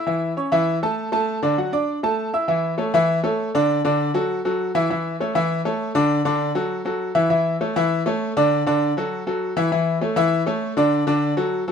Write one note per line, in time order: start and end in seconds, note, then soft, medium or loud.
0.07 0.31 E3 medium
0.07 0.32 E4 medium
0.07 0.32 E5 medium
0.37 0.49 C#4 medium
0.37 0.49 C#5 medium
0.37 0.50 C#6 medium
0.52 0.77 E3 medium
0.52 0.77 E4 medium
0.52 0.77 E5 medium
0.83 1.07 A3 medium
0.83 1.07 A4 medium
0.83 1.08 A5 medium
1.12 1.37 A3 medium
1.12 1.37 A4 medium
1.12 1.37 A5 medium
1.43 1.55 D3 medium
1.43 1.55 D4 medium
1.43 1.55 D5 medium
1.57 1.70 F#3 medium
1.57 1.70 F#4 medium
1.57 1.70 F#5 medium
1.73 1.98 D4 medium
1.73 1.98 D5 medium
1.73 1.98 D6 medium
2.03 2.28 A3 medium
2.03 2.28 A4 medium
2.03 2.28 A5 medium
2.34 2.46 E4 medium
2.34 2.46 E5 medium
2.34 2.46 E6 medium
2.48 2.73 E3 medium
2.48 2.73 E4 medium
2.48 2.73 E5 medium
2.78 2.90 A3 medium
2.78 2.91 A4 medium
2.78 2.91 C#5 medium
2.94 3.19 E3 loud
2.94 3.19 E4 loud
2.94 3.19 E5 loud
3.24 3.48 A3 medium
3.24 3.49 A4 medium
3.24 3.49 C#5 medium
3.55 3.79 D3 medium
3.55 3.79 D4 loud
3.55 3.79 D5 loud
3.85 4.09 D3 medium
3.85 4.09 D4 medium
3.85 4.10 D5 medium
4.14 4.39 F#3 medium
4.14 4.39 F#4 medium
4.14 4.39 A4 medium
4.45 4.69 F#3 medium
4.45 4.70 F#4 medium
4.45 4.70 A4 medium
4.75 4.87 E3 medium
4.75 4.87 E4 loud
4.75 4.87 E5 loud
4.90 5.15 E3 medium
4.90 5.15 E4 medium
4.90 5.15 E5 medium
5.20 5.33 A3 medium
5.20 5.33 A4 medium
5.20 5.33 C#5 medium
5.35 5.60 E3 loud
5.35 5.60 E4 loud
5.35 5.60 E5 loud
5.65 5.90 A3 medium
5.65 5.90 A4 medium
5.65 5.90 C#5 medium
5.95 6.20 D3 loud
5.95 6.20 D4 loud
5.95 6.20 D5 loud
6.25 6.50 D3 loud
6.25 6.50 D4 loud
6.25 6.50 D5 medium
6.55 6.80 F#3 medium
6.55 6.80 F#4 medium
6.55 6.80 A4 medium
6.85 7.10 F#3 medium
6.85 7.10 F#4 medium
6.85 7.10 A4 medium
7.15 7.28 E3 loud
7.15 7.28 E4 medium
7.15 7.28 E5 medium
7.30 7.55 E3 medium
7.30 7.55 E4 medium
7.30 7.55 E5 medium
7.61 7.73 A3 medium
7.61 7.73 A4 medium
7.61 7.74 C#5 medium
7.76 8.01 E3 medium
7.76 8.01 E4 loud
7.76 8.01 E5 loud
8.06 8.31 A3 medium
8.06 8.31 A4 medium
8.06 8.31 C#5 medium
8.37 8.61 D3 loud
8.37 8.61 D4 loud
8.37 8.61 D5 loud
8.67 8.91 D3 medium
8.67 8.91 D4 medium
8.67 8.92 D5 loud
8.97 9.22 F#3 medium
8.97 9.22 F#4 medium
8.97 9.22 A4 medium
9.27 9.51 F#3 medium
9.27 9.51 F#4 medium
9.27 9.52 A4 medium
9.57 9.69 E3 loud
9.57 9.69 E4 loud
9.57 9.69 E5 loud
9.72 9.97 E3 medium
9.72 9.97 E4 medium
9.72 9.97 E5 medium
10.01 10.14 A3 medium
10.01 10.14 A4 medium
10.01 10.14 C#5 medium
10.16 10.41 E3 loud
10.16 10.41 E4 loud
10.16 10.42 E5 loud
10.46 10.71 A3 medium
10.46 10.72 A4 medium
10.46 10.72 C#5 medium
10.77 11.02 D3 medium
10.77 11.02 D4 loud
10.77 11.02 D5 loud
11.07 11.32 D3 medium
11.07 11.32 D4 loud
11.07 11.32 D5 medium
11.37 11.62 F#3 medium
11.37 11.62 F#4 medium
11.37 11.62 A4 medium
11.68 11.72 F#3 medium
11.68 11.72 F#4 medium
11.68 11.72 A4 medium